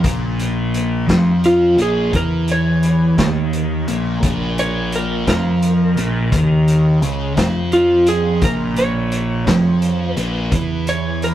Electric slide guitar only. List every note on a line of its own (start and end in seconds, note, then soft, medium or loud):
1.46 1.79 F4 medium
1.82 2.14 G#4 medium
2.16 2.49 A#4 medium
2.52 4.56 C#5 medium
4.59 4.93 C#5 medium
4.96 5.28 A#4 medium
5.30 6.86 A#4 loud
7.73 8.07 F4 medium
8.09 8.42 G#4 medium
8.44 8.77 A#4 medium
8.78 10.11 C#5 loud
10.11 10.84 B4 loud
10.89 11.22 C#5 medium
11.24 11.34 A#4 medium